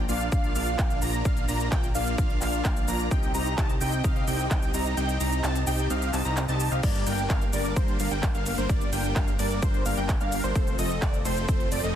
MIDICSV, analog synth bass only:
0, 0, Header, 1, 2, 480
1, 0, Start_track
1, 0, Key_signature, -2, "minor"
1, 0, Tempo, 465116
1, 1293, Time_signature, 4, 2, 24, 8
1, 12336, End_track
2, 0, Start_track
2, 0, Title_t, "Analog synth bass"
2, 0, Program_c, 0, 38
2, 91, Note_on_c, 0, 34, 97
2, 308, Note_off_c, 0, 34, 0
2, 332, Note_on_c, 0, 34, 97
2, 549, Note_off_c, 0, 34, 0
2, 572, Note_on_c, 0, 34, 105
2, 788, Note_off_c, 0, 34, 0
2, 813, Note_on_c, 0, 34, 94
2, 1029, Note_off_c, 0, 34, 0
2, 1053, Note_on_c, 0, 34, 101
2, 1269, Note_off_c, 0, 34, 0
2, 1292, Note_on_c, 0, 34, 96
2, 1509, Note_off_c, 0, 34, 0
2, 1533, Note_on_c, 0, 34, 102
2, 1749, Note_off_c, 0, 34, 0
2, 1772, Note_on_c, 0, 34, 92
2, 1989, Note_off_c, 0, 34, 0
2, 2013, Note_on_c, 0, 34, 97
2, 2229, Note_off_c, 0, 34, 0
2, 2253, Note_on_c, 0, 34, 100
2, 2469, Note_off_c, 0, 34, 0
2, 2492, Note_on_c, 0, 34, 104
2, 2708, Note_off_c, 0, 34, 0
2, 2733, Note_on_c, 0, 34, 94
2, 2949, Note_off_c, 0, 34, 0
2, 2972, Note_on_c, 0, 34, 105
2, 3189, Note_off_c, 0, 34, 0
2, 3213, Note_on_c, 0, 36, 96
2, 3429, Note_off_c, 0, 36, 0
2, 3452, Note_on_c, 0, 36, 103
2, 3668, Note_off_c, 0, 36, 0
2, 3693, Note_on_c, 0, 36, 92
2, 3909, Note_off_c, 0, 36, 0
2, 3932, Note_on_c, 0, 36, 101
2, 4148, Note_off_c, 0, 36, 0
2, 4173, Note_on_c, 0, 36, 101
2, 4389, Note_off_c, 0, 36, 0
2, 4411, Note_on_c, 0, 36, 103
2, 4628, Note_off_c, 0, 36, 0
2, 4652, Note_on_c, 0, 36, 95
2, 4869, Note_off_c, 0, 36, 0
2, 4891, Note_on_c, 0, 36, 106
2, 5108, Note_off_c, 0, 36, 0
2, 5131, Note_on_c, 0, 36, 99
2, 5348, Note_off_c, 0, 36, 0
2, 5371, Note_on_c, 0, 36, 108
2, 5588, Note_off_c, 0, 36, 0
2, 5611, Note_on_c, 0, 36, 92
2, 5828, Note_off_c, 0, 36, 0
2, 5852, Note_on_c, 0, 36, 99
2, 6069, Note_off_c, 0, 36, 0
2, 6092, Note_on_c, 0, 36, 102
2, 6309, Note_off_c, 0, 36, 0
2, 6332, Note_on_c, 0, 36, 106
2, 6429, Note_off_c, 0, 36, 0
2, 6453, Note_on_c, 0, 36, 101
2, 6669, Note_off_c, 0, 36, 0
2, 6693, Note_on_c, 0, 36, 100
2, 6909, Note_off_c, 0, 36, 0
2, 6932, Note_on_c, 0, 36, 91
2, 7029, Note_off_c, 0, 36, 0
2, 7053, Note_on_c, 0, 31, 102
2, 7269, Note_off_c, 0, 31, 0
2, 7293, Note_on_c, 0, 31, 104
2, 7509, Note_off_c, 0, 31, 0
2, 7533, Note_on_c, 0, 31, 93
2, 7749, Note_off_c, 0, 31, 0
2, 7774, Note_on_c, 0, 31, 101
2, 7989, Note_off_c, 0, 31, 0
2, 8013, Note_on_c, 0, 31, 100
2, 8229, Note_off_c, 0, 31, 0
2, 8253, Note_on_c, 0, 31, 101
2, 8349, Note_off_c, 0, 31, 0
2, 8373, Note_on_c, 0, 31, 102
2, 8589, Note_off_c, 0, 31, 0
2, 8612, Note_on_c, 0, 31, 104
2, 8829, Note_off_c, 0, 31, 0
2, 8853, Note_on_c, 0, 31, 93
2, 8949, Note_off_c, 0, 31, 0
2, 8973, Note_on_c, 0, 31, 100
2, 9189, Note_off_c, 0, 31, 0
2, 9213, Note_on_c, 0, 31, 104
2, 9429, Note_off_c, 0, 31, 0
2, 9452, Note_on_c, 0, 31, 99
2, 9669, Note_off_c, 0, 31, 0
2, 9692, Note_on_c, 0, 31, 102
2, 9909, Note_off_c, 0, 31, 0
2, 9933, Note_on_c, 0, 31, 101
2, 10149, Note_off_c, 0, 31, 0
2, 10172, Note_on_c, 0, 31, 106
2, 10269, Note_off_c, 0, 31, 0
2, 10293, Note_on_c, 0, 31, 97
2, 10509, Note_off_c, 0, 31, 0
2, 10532, Note_on_c, 0, 31, 102
2, 10749, Note_off_c, 0, 31, 0
2, 10772, Note_on_c, 0, 31, 96
2, 10869, Note_off_c, 0, 31, 0
2, 10893, Note_on_c, 0, 29, 98
2, 11109, Note_off_c, 0, 29, 0
2, 11133, Note_on_c, 0, 29, 97
2, 11349, Note_off_c, 0, 29, 0
2, 11373, Note_on_c, 0, 29, 99
2, 11589, Note_off_c, 0, 29, 0
2, 11612, Note_on_c, 0, 29, 101
2, 11829, Note_off_c, 0, 29, 0
2, 11853, Note_on_c, 0, 29, 96
2, 12069, Note_off_c, 0, 29, 0
2, 12092, Note_on_c, 0, 29, 102
2, 12189, Note_off_c, 0, 29, 0
2, 12212, Note_on_c, 0, 29, 104
2, 12336, Note_off_c, 0, 29, 0
2, 12336, End_track
0, 0, End_of_file